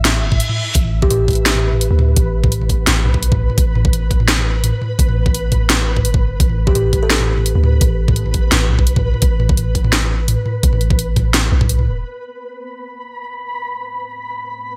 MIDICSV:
0, 0, Header, 1, 7, 480
1, 0, Start_track
1, 0, Key_signature, 0, "minor"
1, 0, Tempo, 352941
1, 1025, Time_signature, 4, 2, 24, 8
1, 20084, End_track
2, 0, Start_track
2, 0, Title_t, "Synth texture"
2, 0, Program_c, 0, 99
2, 0, Note_on_c, 0, 76, 89
2, 1019, Note_on_c, 0, 71, 88
2, 1035, Note_off_c, 0, 76, 0
2, 16385, Note_on_c, 0, 83, 80
2, 16392, Note_off_c, 0, 71, 0
2, 20084, Note_off_c, 0, 83, 0
2, 20084, End_track
3, 0, Start_track
3, 0, Title_t, "Ambient pad"
3, 0, Program_c, 1, 92
3, 16390, Note_on_c, 1, 57, 73
3, 16493, Note_on_c, 1, 69, 76
3, 16669, Note_on_c, 1, 71, 86
3, 16826, Note_on_c, 1, 72, 75
3, 20084, Note_off_c, 1, 57, 0
3, 20084, Note_off_c, 1, 69, 0
3, 20084, Note_off_c, 1, 71, 0
3, 20084, Note_off_c, 1, 72, 0
3, 20084, End_track
4, 0, Start_track
4, 0, Title_t, "Kalimba"
4, 0, Program_c, 2, 108
4, 1395, Note_on_c, 2, 67, 87
4, 1466, Note_off_c, 2, 67, 0
4, 1505, Note_on_c, 2, 67, 76
4, 1587, Note_off_c, 2, 67, 0
4, 9070, Note_on_c, 2, 67, 89
4, 9143, Note_off_c, 2, 67, 0
4, 9184, Note_on_c, 2, 67, 78
4, 9267, Note_off_c, 2, 67, 0
4, 9556, Note_on_c, 2, 69, 88
4, 9626, Note_off_c, 2, 69, 0
4, 9664, Note_on_c, 2, 69, 78
4, 9746, Note_off_c, 2, 69, 0
4, 20084, End_track
5, 0, Start_track
5, 0, Title_t, "808-style bass"
5, 0, Program_c, 3, 38
5, 0, Note_on_c, 3, 33, 102
5, 306, Note_on_c, 3, 31, 97
5, 327, Note_off_c, 3, 33, 0
5, 545, Note_off_c, 3, 31, 0
5, 1023, Note_on_c, 3, 33, 103
5, 2576, Note_off_c, 3, 33, 0
5, 2593, Note_on_c, 3, 38, 96
5, 2931, Note_off_c, 3, 38, 0
5, 2946, Note_on_c, 3, 33, 102
5, 3891, Note_off_c, 3, 33, 0
5, 3905, Note_on_c, 3, 33, 79
5, 4145, Note_on_c, 3, 35, 95
5, 4165, Note_off_c, 3, 33, 0
5, 4737, Note_off_c, 3, 35, 0
5, 4863, Note_on_c, 3, 33, 106
5, 6416, Note_off_c, 3, 33, 0
5, 6785, Note_on_c, 3, 33, 99
5, 8221, Note_on_c, 3, 31, 92
5, 8241, Note_off_c, 3, 33, 0
5, 8689, Note_off_c, 3, 31, 0
5, 8704, Note_on_c, 3, 33, 104
5, 10256, Note_off_c, 3, 33, 0
5, 10273, Note_on_c, 3, 38, 96
5, 10611, Note_off_c, 3, 38, 0
5, 10625, Note_on_c, 3, 33, 99
5, 11570, Note_off_c, 3, 33, 0
5, 11584, Note_on_c, 3, 33, 84
5, 11823, Note_on_c, 3, 35, 96
5, 11844, Note_off_c, 3, 33, 0
5, 12416, Note_off_c, 3, 35, 0
5, 12541, Note_on_c, 3, 33, 100
5, 14095, Note_off_c, 3, 33, 0
5, 14461, Note_on_c, 3, 33, 101
5, 15649, Note_off_c, 3, 33, 0
5, 15667, Note_on_c, 3, 35, 105
5, 16034, Note_on_c, 3, 36, 81
5, 16054, Note_off_c, 3, 35, 0
5, 16146, Note_on_c, 3, 28, 86
5, 16167, Note_off_c, 3, 36, 0
5, 16368, Note_off_c, 3, 28, 0
5, 20084, End_track
6, 0, Start_track
6, 0, Title_t, "Reverse cymbal"
6, 0, Program_c, 4, 119
6, 65, Note_on_c, 4, 60, 64
6, 1025, Note_off_c, 4, 60, 0
6, 20084, End_track
7, 0, Start_track
7, 0, Title_t, "Drums"
7, 66, Note_on_c, 9, 38, 121
7, 66, Note_on_c, 9, 42, 82
7, 66, Note_on_c, 9, 45, 57
7, 202, Note_off_c, 9, 38, 0
7, 202, Note_off_c, 9, 42, 0
7, 202, Note_off_c, 9, 45, 0
7, 433, Note_on_c, 9, 36, 59
7, 433, Note_on_c, 9, 45, 84
7, 544, Note_on_c, 9, 42, 68
7, 569, Note_off_c, 9, 36, 0
7, 569, Note_off_c, 9, 45, 0
7, 670, Note_on_c, 9, 45, 59
7, 680, Note_off_c, 9, 42, 0
7, 806, Note_off_c, 9, 45, 0
7, 1021, Note_on_c, 9, 42, 81
7, 1023, Note_on_c, 9, 36, 118
7, 1151, Note_on_c, 9, 45, 57
7, 1157, Note_off_c, 9, 42, 0
7, 1159, Note_off_c, 9, 36, 0
7, 1287, Note_off_c, 9, 45, 0
7, 1392, Note_on_c, 9, 36, 106
7, 1503, Note_on_c, 9, 42, 69
7, 1503, Note_on_c, 9, 45, 84
7, 1528, Note_off_c, 9, 36, 0
7, 1639, Note_off_c, 9, 42, 0
7, 1639, Note_off_c, 9, 45, 0
7, 1744, Note_on_c, 9, 36, 63
7, 1745, Note_on_c, 9, 42, 17
7, 1745, Note_on_c, 9, 45, 56
7, 1776, Note_off_c, 9, 42, 0
7, 1776, Note_on_c, 9, 42, 22
7, 1810, Note_off_c, 9, 42, 0
7, 1810, Note_on_c, 9, 42, 28
7, 1841, Note_off_c, 9, 42, 0
7, 1841, Note_on_c, 9, 42, 31
7, 1880, Note_off_c, 9, 36, 0
7, 1881, Note_off_c, 9, 45, 0
7, 1977, Note_off_c, 9, 42, 0
7, 1983, Note_on_c, 9, 38, 123
7, 1983, Note_on_c, 9, 42, 85
7, 2110, Note_on_c, 9, 45, 80
7, 2119, Note_off_c, 9, 38, 0
7, 2119, Note_off_c, 9, 42, 0
7, 2246, Note_off_c, 9, 45, 0
7, 2353, Note_on_c, 9, 45, 55
7, 2464, Note_on_c, 9, 42, 69
7, 2489, Note_off_c, 9, 45, 0
7, 2600, Note_off_c, 9, 42, 0
7, 2704, Note_on_c, 9, 45, 85
7, 2840, Note_off_c, 9, 45, 0
7, 2943, Note_on_c, 9, 42, 83
7, 2943, Note_on_c, 9, 45, 55
7, 2945, Note_on_c, 9, 36, 127
7, 3079, Note_off_c, 9, 42, 0
7, 3079, Note_off_c, 9, 45, 0
7, 3081, Note_off_c, 9, 36, 0
7, 3311, Note_on_c, 9, 45, 80
7, 3313, Note_on_c, 9, 36, 116
7, 3425, Note_on_c, 9, 42, 67
7, 3447, Note_off_c, 9, 45, 0
7, 3449, Note_off_c, 9, 36, 0
7, 3554, Note_on_c, 9, 45, 54
7, 3561, Note_off_c, 9, 42, 0
7, 3664, Note_on_c, 9, 36, 64
7, 3667, Note_on_c, 9, 42, 38
7, 3690, Note_off_c, 9, 45, 0
7, 3800, Note_off_c, 9, 36, 0
7, 3803, Note_off_c, 9, 42, 0
7, 3903, Note_on_c, 9, 38, 125
7, 3903, Note_on_c, 9, 42, 82
7, 3903, Note_on_c, 9, 45, 82
7, 4039, Note_off_c, 9, 38, 0
7, 4039, Note_off_c, 9, 42, 0
7, 4039, Note_off_c, 9, 45, 0
7, 4145, Note_on_c, 9, 45, 56
7, 4272, Note_on_c, 9, 36, 67
7, 4281, Note_off_c, 9, 45, 0
7, 4387, Note_on_c, 9, 42, 72
7, 4408, Note_off_c, 9, 36, 0
7, 4512, Note_on_c, 9, 36, 107
7, 4512, Note_on_c, 9, 45, 83
7, 4523, Note_off_c, 9, 42, 0
7, 4648, Note_off_c, 9, 36, 0
7, 4648, Note_off_c, 9, 45, 0
7, 4754, Note_on_c, 9, 45, 54
7, 4865, Note_on_c, 9, 36, 124
7, 4865, Note_on_c, 9, 42, 80
7, 4890, Note_off_c, 9, 45, 0
7, 5001, Note_off_c, 9, 36, 0
7, 5001, Note_off_c, 9, 42, 0
7, 5105, Note_on_c, 9, 45, 76
7, 5234, Note_on_c, 9, 36, 115
7, 5241, Note_off_c, 9, 45, 0
7, 5347, Note_on_c, 9, 42, 67
7, 5347, Note_on_c, 9, 45, 51
7, 5370, Note_off_c, 9, 36, 0
7, 5483, Note_off_c, 9, 42, 0
7, 5483, Note_off_c, 9, 45, 0
7, 5585, Note_on_c, 9, 36, 67
7, 5588, Note_on_c, 9, 42, 37
7, 5712, Note_on_c, 9, 45, 77
7, 5721, Note_off_c, 9, 36, 0
7, 5724, Note_off_c, 9, 42, 0
7, 5824, Note_on_c, 9, 38, 123
7, 5824, Note_on_c, 9, 42, 84
7, 5848, Note_off_c, 9, 45, 0
7, 5956, Note_on_c, 9, 45, 52
7, 5960, Note_off_c, 9, 38, 0
7, 5960, Note_off_c, 9, 42, 0
7, 6092, Note_off_c, 9, 45, 0
7, 6306, Note_on_c, 9, 42, 69
7, 6306, Note_on_c, 9, 45, 80
7, 6442, Note_off_c, 9, 42, 0
7, 6442, Note_off_c, 9, 45, 0
7, 6549, Note_on_c, 9, 45, 53
7, 6685, Note_off_c, 9, 45, 0
7, 6785, Note_on_c, 9, 36, 125
7, 6791, Note_on_c, 9, 42, 78
7, 6918, Note_on_c, 9, 45, 76
7, 6921, Note_off_c, 9, 36, 0
7, 6927, Note_off_c, 9, 42, 0
7, 7054, Note_off_c, 9, 45, 0
7, 7153, Note_on_c, 9, 36, 113
7, 7157, Note_on_c, 9, 45, 51
7, 7269, Note_on_c, 9, 42, 66
7, 7289, Note_off_c, 9, 36, 0
7, 7293, Note_off_c, 9, 45, 0
7, 7405, Note_off_c, 9, 42, 0
7, 7504, Note_on_c, 9, 42, 37
7, 7504, Note_on_c, 9, 45, 75
7, 7505, Note_on_c, 9, 36, 65
7, 7640, Note_off_c, 9, 42, 0
7, 7640, Note_off_c, 9, 45, 0
7, 7641, Note_off_c, 9, 36, 0
7, 7746, Note_on_c, 9, 38, 127
7, 7746, Note_on_c, 9, 42, 81
7, 7746, Note_on_c, 9, 45, 52
7, 7882, Note_off_c, 9, 38, 0
7, 7882, Note_off_c, 9, 42, 0
7, 7882, Note_off_c, 9, 45, 0
7, 8113, Note_on_c, 9, 36, 64
7, 8115, Note_on_c, 9, 45, 74
7, 8226, Note_on_c, 9, 42, 66
7, 8249, Note_off_c, 9, 36, 0
7, 8251, Note_off_c, 9, 45, 0
7, 8352, Note_on_c, 9, 36, 108
7, 8352, Note_on_c, 9, 45, 54
7, 8362, Note_off_c, 9, 42, 0
7, 8488, Note_off_c, 9, 36, 0
7, 8488, Note_off_c, 9, 45, 0
7, 8704, Note_on_c, 9, 36, 124
7, 8705, Note_on_c, 9, 42, 74
7, 8832, Note_on_c, 9, 45, 52
7, 8840, Note_off_c, 9, 36, 0
7, 8841, Note_off_c, 9, 42, 0
7, 8968, Note_off_c, 9, 45, 0
7, 9072, Note_on_c, 9, 36, 109
7, 9183, Note_on_c, 9, 42, 64
7, 9183, Note_on_c, 9, 45, 77
7, 9208, Note_off_c, 9, 36, 0
7, 9319, Note_off_c, 9, 42, 0
7, 9319, Note_off_c, 9, 45, 0
7, 9424, Note_on_c, 9, 36, 62
7, 9424, Note_on_c, 9, 42, 34
7, 9424, Note_on_c, 9, 45, 50
7, 9560, Note_off_c, 9, 36, 0
7, 9560, Note_off_c, 9, 42, 0
7, 9560, Note_off_c, 9, 45, 0
7, 9659, Note_on_c, 9, 38, 126
7, 9659, Note_on_c, 9, 42, 79
7, 9792, Note_on_c, 9, 45, 77
7, 9795, Note_off_c, 9, 38, 0
7, 9795, Note_off_c, 9, 42, 0
7, 9928, Note_off_c, 9, 45, 0
7, 10032, Note_on_c, 9, 45, 50
7, 10143, Note_on_c, 9, 42, 66
7, 10168, Note_off_c, 9, 45, 0
7, 10279, Note_off_c, 9, 42, 0
7, 10383, Note_on_c, 9, 45, 79
7, 10519, Note_off_c, 9, 45, 0
7, 10622, Note_on_c, 9, 42, 75
7, 10622, Note_on_c, 9, 45, 52
7, 10625, Note_on_c, 9, 36, 121
7, 10758, Note_off_c, 9, 42, 0
7, 10758, Note_off_c, 9, 45, 0
7, 10761, Note_off_c, 9, 36, 0
7, 10990, Note_on_c, 9, 45, 84
7, 10992, Note_on_c, 9, 36, 106
7, 11099, Note_on_c, 9, 42, 63
7, 11126, Note_off_c, 9, 45, 0
7, 11128, Note_off_c, 9, 36, 0
7, 11230, Note_on_c, 9, 45, 51
7, 11235, Note_off_c, 9, 42, 0
7, 11342, Note_on_c, 9, 42, 36
7, 11344, Note_on_c, 9, 36, 61
7, 11366, Note_off_c, 9, 45, 0
7, 11478, Note_off_c, 9, 42, 0
7, 11480, Note_off_c, 9, 36, 0
7, 11583, Note_on_c, 9, 38, 122
7, 11583, Note_on_c, 9, 42, 79
7, 11583, Note_on_c, 9, 45, 81
7, 11719, Note_off_c, 9, 38, 0
7, 11719, Note_off_c, 9, 42, 0
7, 11719, Note_off_c, 9, 45, 0
7, 11820, Note_on_c, 9, 45, 55
7, 11951, Note_on_c, 9, 36, 60
7, 11956, Note_off_c, 9, 45, 0
7, 12060, Note_on_c, 9, 42, 62
7, 12087, Note_off_c, 9, 36, 0
7, 12188, Note_on_c, 9, 45, 81
7, 12191, Note_on_c, 9, 36, 98
7, 12196, Note_off_c, 9, 42, 0
7, 12324, Note_off_c, 9, 45, 0
7, 12327, Note_off_c, 9, 36, 0
7, 12430, Note_on_c, 9, 45, 52
7, 12536, Note_on_c, 9, 42, 78
7, 12543, Note_on_c, 9, 36, 115
7, 12566, Note_off_c, 9, 45, 0
7, 12672, Note_off_c, 9, 42, 0
7, 12679, Note_off_c, 9, 36, 0
7, 12780, Note_on_c, 9, 45, 80
7, 12910, Note_on_c, 9, 36, 108
7, 12916, Note_off_c, 9, 45, 0
7, 13020, Note_on_c, 9, 42, 64
7, 13020, Note_on_c, 9, 45, 56
7, 13046, Note_off_c, 9, 36, 0
7, 13156, Note_off_c, 9, 42, 0
7, 13156, Note_off_c, 9, 45, 0
7, 13261, Note_on_c, 9, 36, 59
7, 13263, Note_on_c, 9, 42, 36
7, 13387, Note_on_c, 9, 45, 83
7, 13397, Note_off_c, 9, 36, 0
7, 13399, Note_off_c, 9, 42, 0
7, 13498, Note_on_c, 9, 38, 117
7, 13498, Note_on_c, 9, 42, 78
7, 13523, Note_off_c, 9, 45, 0
7, 13629, Note_on_c, 9, 45, 54
7, 13634, Note_off_c, 9, 38, 0
7, 13634, Note_off_c, 9, 42, 0
7, 13765, Note_off_c, 9, 45, 0
7, 13982, Note_on_c, 9, 42, 65
7, 13982, Note_on_c, 9, 45, 83
7, 14118, Note_off_c, 9, 42, 0
7, 14118, Note_off_c, 9, 45, 0
7, 14220, Note_on_c, 9, 45, 57
7, 14356, Note_off_c, 9, 45, 0
7, 14461, Note_on_c, 9, 42, 80
7, 14462, Note_on_c, 9, 36, 120
7, 14588, Note_on_c, 9, 45, 83
7, 14597, Note_off_c, 9, 42, 0
7, 14598, Note_off_c, 9, 36, 0
7, 14700, Note_on_c, 9, 42, 38
7, 14724, Note_off_c, 9, 45, 0
7, 14830, Note_on_c, 9, 36, 104
7, 14831, Note_on_c, 9, 45, 58
7, 14836, Note_off_c, 9, 42, 0
7, 14943, Note_on_c, 9, 42, 70
7, 14966, Note_off_c, 9, 36, 0
7, 14967, Note_off_c, 9, 45, 0
7, 15079, Note_off_c, 9, 42, 0
7, 15182, Note_on_c, 9, 36, 60
7, 15185, Note_on_c, 9, 42, 36
7, 15185, Note_on_c, 9, 45, 85
7, 15318, Note_off_c, 9, 36, 0
7, 15321, Note_off_c, 9, 42, 0
7, 15321, Note_off_c, 9, 45, 0
7, 15422, Note_on_c, 9, 38, 118
7, 15422, Note_on_c, 9, 42, 81
7, 15422, Note_on_c, 9, 45, 56
7, 15558, Note_off_c, 9, 38, 0
7, 15558, Note_off_c, 9, 42, 0
7, 15558, Note_off_c, 9, 45, 0
7, 15790, Note_on_c, 9, 36, 59
7, 15792, Note_on_c, 9, 45, 83
7, 15903, Note_on_c, 9, 42, 69
7, 15926, Note_off_c, 9, 36, 0
7, 15928, Note_off_c, 9, 45, 0
7, 16032, Note_on_c, 9, 45, 59
7, 16039, Note_off_c, 9, 42, 0
7, 16168, Note_off_c, 9, 45, 0
7, 20084, End_track
0, 0, End_of_file